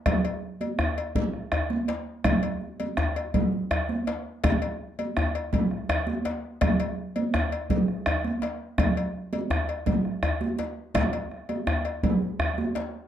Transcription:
0.06 bombo rim medium
0.06 bombo low medium
0.06 cowbell medium
0.06 djembe tone medium
0.06 djembe bass medium
0.06 low conga medium
0.24 bombo rim soft
0.24 cowbell soft
0.24 djembe slap soft
0.24 high conga soft
0.61 cowbell soft
0.61 high conga medium
0.79 bombo rim medium
0.79 djembe slap medium
0.79 djembe tone medium
0.79 djembe bass medium
0.98 cowbell soft
0.98 djembe slap soft
1.15 bombo low medium
1.15 cowbell soft
1.15 low conga medium
1.33 bombo rim soft
1.52 bombo rim medium
1.52 cowbell soft
1.52 djembe tone medium
1.52 djembe bass medium
1.70 djembe slap soft
1.70 high conga medium
1.88 cowbell soft
1.88 djembe slap medium
2.24 bombo rim medium
2.24 bombo low loud
2.24 cowbell medium
2.24 djembe tone medium
2.24 low conga medium
2.24 djembe bass medium
2.43 cowbell soft
2.61 high conga soft
2.80 cowbell soft
2.80 high conga medium
2.97 bombo rim medium
2.97 djembe slap medium
2.97 djembe tone medium
2.97 djembe bass medium
3.16 bombo rim soft
3.16 cowbell soft
3.16 high conga soft
3.34 bombo low medium
3.34 cowbell soft
3.34 low conga medium
3.52 high conga soft
3.71 bombo rim medium
3.71 cowbell soft
3.71 djembe tone medium
3.71 djembe bass medium
3.89 high conga medium
4.07 cowbell soft
4.07 djembe slap medium
4.44 bombo rim medium
4.44 bombo low medium
4.44 cowbell medium
4.44 djembe tone medium
4.44 djembe bass medium
4.44 low conga medium
4.62 bombo rim soft
4.62 cowbell medium
4.62 djembe slap soft
4.99 cowbell soft
4.99 high conga medium
5.17 bombo rim medium
5.17 djembe slap medium
5.17 djembe tone medium
5.17 djembe bass medium
5.35 cowbell soft
5.35 djembe slap soft
5.53 bombo low medium
5.53 cowbell soft
5.53 low conga medium
5.71 bombo rim soft
5.89 bombo rim medium
5.89 cowbell medium
5.89 djembe tone medium
5.89 djembe bass medium
6.07 djembe slap soft
6.07 high conga medium
6.25 cowbell soft
6.25 djembe slap medium
6.61 bombo rim medium
6.61 bombo low loud
6.61 cowbell medium
6.61 djembe tone medium
6.61 low conga medium
6.61 djembe bass medium
6.80 bombo rim soft
6.80 cowbell medium
6.80 djembe slap soft
6.80 high conga soft
7.16 cowbell soft
7.16 high conga medium
7.34 bombo rim medium
7.34 djembe slap medium
7.34 djembe tone medium
7.34 djembe bass medium
7.52 cowbell soft
7.52 djembe slap soft
7.70 bombo low medium
7.70 cowbell soft
7.70 low conga medium
7.88 bombo rim soft
8.06 bombo rim medium
8.06 cowbell soft
8.06 djembe tone medium
8.06 djembe bass medium
8.24 djembe slap soft
8.24 high conga medium
8.42 cowbell soft
8.42 djembe slap medium
8.78 bombo rim medium
8.78 bombo low medium
8.78 cowbell medium
8.78 djembe tone medium
8.78 low conga medium
8.78 djembe bass medium
8.96 bombo rim soft
8.96 cowbell soft
8.96 djembe slap soft
8.96 high conga soft
9.33 cowbell soft
9.33 high conga medium
9.50 bombo rim medium
9.50 djembe slap medium
9.50 djembe tone medium
9.50 djembe bass medium
9.68 cowbell soft
9.68 djembe slap soft
9.86 bombo low medium
9.86 cowbell soft
9.86 djembe slap soft
9.86 low conga medium
10.05 bombo rim soft
10.23 bombo rim medium
10.23 cowbell soft
10.23 djembe tone medium
10.23 djembe bass medium
10.41 djembe slap soft
10.41 high conga medium
10.59 cowbell soft
10.59 djembe slap medium
10.94 bombo rim medium
10.94 bombo low medium
10.94 cowbell medium
10.94 djembe slap soft
10.94 djembe tone medium
10.94 high conga soft
10.94 djembe bass medium
10.94 low conga medium
11.13 cowbell soft
11.13 high conga soft
11.31 bombo rim soft
11.31 djembe slap soft
11.49 bombo rim soft
11.49 cowbell soft
11.49 high conga medium
11.67 bombo rim medium
11.67 djembe slap medium
11.67 djembe tone medium
11.67 djembe bass medium
11.85 bombo rim soft
11.85 cowbell soft
12.03 bombo low medium
12.03 cowbell soft
12.03 low conga medium
12.22 high conga soft
12.39 bombo rim medium
12.39 djembe slap soft
12.39 djembe tone medium
12.39 high conga soft
12.39 djembe bass medium
12.58 high conga medium
12.75 cowbell soft
12.75 djembe slap medium

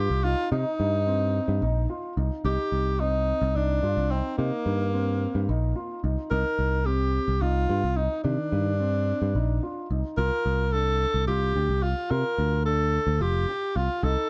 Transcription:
0.00 0.19 F4 medium
0.00 0.26 G4 medium
0.10 0.34 C2 medium
0.24 0.46 D#4 medium
0.24 0.51 F4 medium
0.52 0.64 C3 medium
0.52 0.97 D#4 medium
0.52 2.13 D#4 medium
0.80 1.39 G2 medium
1.07 1.52 C4 medium
1.48 1.60 G2 medium
1.62 1.86 A#1 medium
1.62 1.84 D#4 medium
1.90 2.12 F4 medium
2.17 2.29 C2 medium
2.17 2.40 D#4 medium
2.44 2.57 C2 medium
2.44 2.90 D#4 medium
2.44 3.02 G4 medium
2.72 3.32 C2 medium
3.00 3.45 C4 medium
3.00 3.57 D#4 medium
3.42 3.53 C2 medium
3.55 3.79 C2 medium
3.55 4.12 D4 medium
3.55 3.78 D#4 medium
3.83 3.95 G2 medium
3.83 4.06 F4 medium
3.97 4.21 C2 medium
4.11 4.37 C4 medium
4.11 4.33 D#4 medium
4.37 4.50 C3 medium
4.37 6.00 A#3 medium
4.37 4.83 D#4 medium
4.66 5.25 G2 medium
4.93 5.38 C4 medium
5.35 5.47 G2 medium
5.48 5.73 A#1 medium
5.48 5.71 D#4 medium
5.76 5.99 F4 medium
6.03 6.16 C2 medium
6.03 6.26 D#4 medium
6.31 6.43 C2 loud
6.31 6.76 D#4 medium
6.31 6.87 A#4 medium
6.59 7.18 C2 medium
6.86 7.31 C4 medium
6.86 7.43 G4 medium
7.28 7.40 C2 medium
7.41 7.65 C2 medium
7.41 7.64 D#4 medium
7.41 7.98 F4 medium
7.69 7.81 G2 medium
7.69 7.92 F4 medium
7.84 8.07 C2 medium
7.97 8.24 D#4 medium
7.97 8.20 D#4 medium
8.24 8.37 C3 medium
8.24 8.70 D#3 medium
8.24 9.86 D4 medium
8.52 9.12 G2 medium
8.80 9.25 C4 medium
9.22 9.33 G2 medium
9.35 9.59 A#1 medium
9.35 9.57 D#4 medium
9.63 9.85 F4 medium
9.91 10.02 C2 medium
9.91 10.13 D#4 medium
10.18 10.30 C2 medium
10.18 10.63 F4 medium
10.18 10.74 A#4 medium
10.46 11.05 C2 medium
10.73 11.18 D4 medium
10.73 11.27 A4 medium
11.14 11.26 C2 medium
11.28 11.52 C2 medium
11.28 11.51 F4 medium
11.28 11.85 G4 medium
11.55 11.67 D2 medium
11.55 11.78 G4 medium
11.69 11.93 C2 medium
11.82 12.05 F4 medium
11.82 12.12 F4 medium
12.10 12.23 C3 medium
12.10 12.56 F4 medium
12.10 12.65 A#4 medium
12.38 12.98 D2 medium
12.65 13.11 D4 medium
12.65 13.23 A4 medium
13.07 13.19 D2 medium
13.21 13.45 F1 medium
13.21 13.43 F4 medium
13.21 13.78 G4 medium
13.48 13.71 G4 medium
13.75 13.88 C2 medium
13.75 13.98 F4 medium
13.75 14.05 F4 medium
14.03 14.15 C2 loud
14.03 14.30 D#4 medium
14.03 14.30 A4 medium

